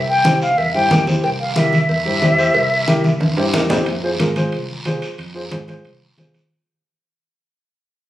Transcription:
Already playing: fingered electric bass C2
0.09 flute G5
0.25 upright piano E4 G4 C5, high conga, short guiro
0.42 flute F5, short guiro
0.58 fingered electric bass E2, flute E5, cowbell, high conga, long guiro
0.74 fingered electric bass G2, upright piano E4 G4 C5, flute G5, high conga
0.90 fingered electric bass E2, upright piano E4 G4 A#4, high conga, low conga, short guiro
1.07 upright piano E4 G4 C5, high conga, short guiro
1.24 fingered electric bass C2, flute G5, cowbell, long guiro
1.40 flute F5
1.56 upright piano E4 G4 A#4, flute E5, high conga, short guiro
1.73 high conga, short guiro
1.88 fingered electric bass E2, flute E5, cowbell, high conga, long guiro
2.05 fingered electric bass G2, upright piano E4 G4 C5, high conga
2.22 fingered electric bass E2, upright piano E4 G4 C5, high conga, low timbale, short guiro
2.37 upright piano E4 G4 C5, short guiro
2.54 fingered electric bass C2, cowbell, long guiro
2.87 upright piano E4 G4 A#4, high conga, short guiro
3.04 high conga, short guiro
3.20 fingered electric bass E2, cowbell, high conga, high timbale, long guiro
3.37 fingered electric bass G2, upright piano E4 G4 C5, high timbale
3.54 fingered electric bass E2, upright piano E4 G4 A#4, low conga, short guiro
3.70 upright piano E4 G4 C5, low conga, low timbale, short guiro
3.86 fingered electric bass F2, high timbale, long guiro
4.03 upright piano F4 G#4 C5
4.19 fingered electric bass G#2, upright piano F4 G#4 A#4, high conga, high timbale, short guiro
4.36 upright piano F4 G#4 C5, high conga, high timbale, short guiro
4.52 fingered electric bass C2, high conga, high timbale, long guiro
4.69 high conga
4.85 fingered electric bass C2, upright piano F4 G#4 C5, high conga, high timbale, low timbale, short guiro
5.02 high timbale, short guiro
5.18 fingered electric bass F2, high timbale, long guiro
5.34 upright piano F4 G#4 C5
5.51 fingered electric bass G#2, upright piano F4 G#4 C5, high conga, high timbale, short guiro
5.68 upright piano F4 G#4 C5, high conga, high timbale, short guiro
5.84 fingered electric bass C2, high conga, high timbale, long guiro
6.01 high conga
6.18 fingered electric bass C2, upright piano F4 G#4 C5, high conga, high timbale, low timbale, short guiro
6.34 high conga, high timbale, short guiro

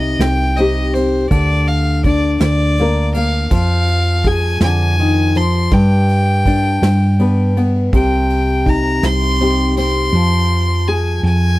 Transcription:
Already playing: fingered electric bass C2, nylon-string guitar C3 D#4, fiddle D#5
0.19 fingered electric bass C2, fiddle G5, snare, ride
0.57 nylon-string guitar C4 D#4 G4, fiddle D#5, ride
0.94 nylon-string guitar C4, fiddle C5, ride
1.30 fingered electric bass D2, nylon-string guitar D3, fiddle D5, kick, ride
1.68 fiddle F5, ride
2.04 nylon-string guitar D4, fiddle D5, kick, ride
2.40 fingered electric bass D2, fiddle D5, snare, ride
2.78 nylon-string guitar A#3 D4 A#4, ride
3.14 nylon-string guitar A#3, fiddle F5, ride
3.51 fingered electric bass F2, nylon-string guitar F3, fiddle F5, kick, ride
3.87 ride
4.24 nylon-string guitar G#4, fiddle G#5, kick, ride
4.60 fingered electric bass F2, nylon-string guitar D3, fiddle G#5, snare, ride
4.98 nylon-string guitar D#3, ride
5.35 nylon-string guitar F3, fiddle C6, ride
5.71 fingered electric bass G2, nylon-string guitar G2, fiddle G5, kick, ride
6.09 ride
6.46 nylon-string guitar D4, kick, ride
6.82 fingered electric bass G2, snare, ride
7.19 nylon-string guitar B3 D4 B4, ride
7.57 nylon-string guitar B3, ride
7.93 fingered electric bass C2, nylon-string guitar C3, fiddle G5, kick, ride
8.30 ride
8.66 nylon-string guitar D#4, fiddle A#5, kick, ride
9.03 fingered electric bass C2, fiddle C6, snare, ride
9.41 nylon-string guitar C4 D#4 G4, ride
9.77 nylon-string guitar C4, fiddle C6, ride
10.13 fingered electric bass F2, nylon-string guitar F3
10.88 nylon-string guitar G#4, fiddle G#5
11.23 fingered electric bass F2, fiddle G#5

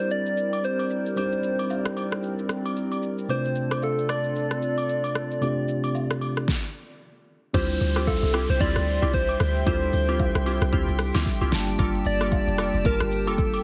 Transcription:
Already playing: tine electric piano G3 C4 D4 E4 A#4, analog synth pad C4 E4 G4 A#4 D5
0.00 soft synth lead C5
0.11 soft synth lead D5, shaker
0.26 shaker
0.37 shaker
0.53 high agogo, shaker
0.64 soft synth lead C5, shaker
0.79 high agogo, shaker
0.90 shaker
1.06 shaker
1.16 tine electric piano G3 C4 D4 D#4 G4, soft synth lead C5, high agogo, shaker
1.25 tine electric piano E4
1.32 shaker
1.43 shaker
1.59 high agogo, shaker
1.70 low woodblock, shaker
1.86 cross-stick, shaker
1.97 high agogo, shaker
2.11 cross-stick, shaker
2.23 shaker
2.39 shaker
2.49 cross-stick, shaker
2.65 high agogo, shaker
2.76 shaker
2.92 high agogo, shaker
3.03 shaker
3.18 shaker
3.28 tine electric piano C3 A3 C4 D4 F4 B4, analog synth pad D4 F4 A4, soft synth lead C5, high agogo, shaker
3.38 tine electric piano C5
3.45 shaker
3.55 shaker
3.71 cross-stick, high agogo, shaker
3.82 soft synth lead A4, low woodblock, shaker
3.98 shaker
4.09 soft synth lead D5, cross-stick, high agogo, shaker
4.24 shaker
4.36 shaker
4.51 cross-stick, shaker
4.62 shaker
4.78 high agogo, shaker
4.89 shaker
5.04 high agogo, shaker
5.15 cross-stick, shaker
5.31 shaker
5.41 tine electric piano C3 A3 C4 D4 F4 G4, high agogo, shaker
5.68 shaker
5.84 high agogo, shaker
5.95 low woodblock, shaker
6.11 cross-stick, shaker
6.21 high agogo, shaker
6.36 cross-stick, shaker
6.48 kick, snare
7.53 log drum bass D2, tine electric piano G3 D4 E4 F4 C5, synth pluck C4 E4 F4 G4, analog synth pad G4 E5 G5 C6, soft synth lead C5, kick, crash, downlifter, high agogo, shaker
7.70 shaker
7.80 log drum bass D2, open hi-hat, shaker
7.96 synth pluck C4 E4 F4 G4, cross-stick, high agogo, shaker
8.07 soft synth lead A4, kick, low woodblock, shaker
8.23 log drum bass C2, shaker
8.33 synth pluck C4 E4 F4 G4, cross-stick, open hi-hat, high agogo, shaker
8.49 log drum bass C2, soft synth lead C5, shaker
8.60 log drum bass D2, synth pluck C4 E4 F4 G4, soft synth lead D5, kick, shaker
8.76 log drum bass D2, cross-stick, shaker
8.87 open hi-hat, shaker
9.02 log drum bass C2, synth pluck C4 E4 F4 G4, high agogo, shaker
9.14 soft synth lead C5, kick, shaker
9.29 high agogo, shaker
9.40 log drum bass D2, cross-stick, open hi-hat, shaker
9.56 shaker
9.66 log drum bass D2, tine electric piano G3 D4 E4 F4 A4, synth pluck C4 E4 F4 G4, soft synth lead C5, kick, high agogo, shaker
9.82 shaker
9.93 log drum bass D2, open hi-hat, shaker
10.08 synth pluck C4 E4 F4 G4, high agogo, shaker
10.19 kick, low woodblock, shaker
10.35 log drum bass C2, cross-stick, shaker
10.46 synth pluck C4 E4 F4 G4, open hi-hat, high agogo, shaker
10.61 log drum bass C2, cross-stick, shaker
10.72 log drum bass D2, synth pluck C4 E4 F4 G4, kick, shaker
10.88 log drum bass C2, shaker
10.99 cross-stick, open hi-hat, shaker
11.14 log drum bass D2, synth pluck C4 E4 F4 G4, snare, high agogo, shaker
11.26 kick, shaker
11.41 log drum bass C2, synth pluck C4 E4 F4 G4, high agogo, shaker
11.51 log drum bass G1, tine electric piano G3 A#3 D4 F4 A5, analog synth pad A5, snare, open hi-hat, shaker
11.68 shaker
11.79 log drum bass G1, synth pluck A#3 F4 A4, kick, high agogo, shaker
11.94 shaker
12.05 log drum bass G1, soft synth lead D5, open hi-hat, shaker
12.21 synth pluck A#3 F4 A4, cross-stick, high agogo, shaker
12.32 kick, low woodblock, shaker
12.47 log drum bass F1, shaker
12.58 synth pluck A#3 F4 A4, cross-stick, open hi-hat, high agogo, shaker
12.73 log drum bass F1, shaker
12.85 log drum bass G1, synth pluck A#3 F4 A5, soft synth lead A#4, kick, shaker
13.00 log drum bass G1, cross-stick, shaker
13.11 open hi-hat, shaker
13.27 log drum bass F1, synth pluck A#3 F4 A4, soft synth lead A4, high agogo, shaker
13.38 kick, shaker
13.54 high agogo, shaker

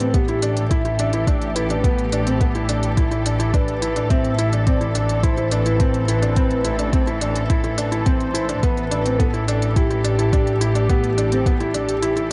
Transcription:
Already playing: double bass section A1, string section A2 E3 G4 A4, soft synth lead B4
0.00 felt piano C4, closed hi-hat
0.14 felt piano B3, soft synth lead G4, kick, closed hi-hat
0.28 felt piano E4, closed hi-hat
0.42 felt piano D4, closed hi-hat
0.57 closed hi-hat
0.69 felt piano E4, soft synth lead E5, kick, closed hi-hat
0.85 felt piano E4, closed hi-hat
0.99 felt piano D4, closed hi-hat
1.13 felt piano E4, closed hi-hat
1.27 felt piano D4, kick, closed hi-hat
1.42 closed hi-hat
1.55 felt piano E4, soft synth lead B4, closed hi-hat
1.70 felt piano D4, closed hi-hat
1.84 felt piano B3, kick, closed hi-hat
1.99 closed hi-hat
2.12 felt piano D4, closed hi-hat
2.27 felt piano C4, closed hi-hat
2.41 felt piano B3, kick, closed hi-hat
2.55 felt piano E4, closed hi-hat
2.69 felt piano D4, closed hi-hat
2.83 closed hi-hat
2.97 felt piano E4, kick, closed hi-hat
3.11 felt piano E4, closed hi-hat
3.26 felt piano D4, closed hi-hat
3.39 felt piano E4, closed hi-hat
3.53 felt piano D4, soft synth lead B4, kick, closed hi-hat
3.68 closed hi-hat
3.82 felt piano E4, closed hi-hat
3.96 felt piano D4, closed hi-hat
4.09 double bass section A1, felt piano C4, soft synth lead E5, kick, closed hi-hat
4.24 closed hi-hat
4.38 felt piano E4, closed hi-hat
4.53 felt piano D4, closed hi-hat
4.60 string section C4
4.66 felt piano C4, soft synth lead D5, kick, closed hi-hat
4.81 felt piano E4, closed hi-hat
4.95 felt piano D4, closed hi-hat
5.09 closed hi-hat
5.23 felt piano E4, soft synth lead C5, kick, closed hi-hat
5.37 felt piano E4, closed hi-hat
5.51 felt piano D4, soft synth lead B4, closed hi-hat
5.66 felt piano E4, closed hi-hat
5.80 felt piano C4, kick, closed hi-hat
5.94 closed hi-hat
6.08 felt piano E4, soft synth lead B4, closed hi-hat
6.22 felt piano D4, closed hi-hat
6.36 felt piano C4, kick, closed hi-hat
6.51 closed hi-hat
6.65 felt piano E4, closed hi-hat
6.79 felt piano D4, closed hi-hat
6.93 felt piano C4, kick, closed hi-hat
7.07 felt piano E4, closed hi-hat
7.21 felt piano D4, closed hi-hat
7.36 closed hi-hat
7.50 felt piano E4, kick, closed hi-hat
7.64 felt piano E4, closed hi-hat
7.78 felt piano D4, closed hi-hat
7.92 felt piano E4, closed hi-hat
8.06 felt piano C4, soft synth lead C5, kick, closed hi-hat
8.20 closed hi-hat
8.34 felt piano E4, closed hi-hat
8.49 felt piano D4, closed hi-hat
8.63 double bass section A1, felt piano B3, soft synth lead B4, kick, closed hi-hat
8.77 closed hi-hat
8.90 felt piano D4, string section G4, closed hi-hat
9.05 felt piano C4, closed hi-hat
9.19 felt piano B3, soft synth lead A4, kick, closed hi-hat
9.34 felt piano E4, closed hi-hat
9.48 felt piano D4, closed hi-hat
9.62 closed hi-hat
9.76 felt piano E4, soft synth lead G4, kick, closed hi-hat
9.90 felt piano E4, closed hi-hat
10.04 felt piano D4, closed hi-hat
10.19 felt piano E4, closed hi-hat
10.33 felt piano D4, kick, closed hi-hat
10.47 closed hi-hat
10.61 felt piano E4, closed hi-hat
10.75 felt piano D4, closed hi-hat
10.89 felt piano B3, kick, closed hi-hat
11.04 closed hi-hat
11.18 felt piano D4, closed hi-hat
11.32 felt piano C4, closed hi-hat
11.46 felt piano B3, kick, closed hi-hat
11.60 felt piano E4, closed hi-hat
11.74 felt piano D4, closed hi-hat
11.89 closed hi-hat
12.02 felt piano E4, closed hi-hat
12.16 felt piano E4, closed hi-hat

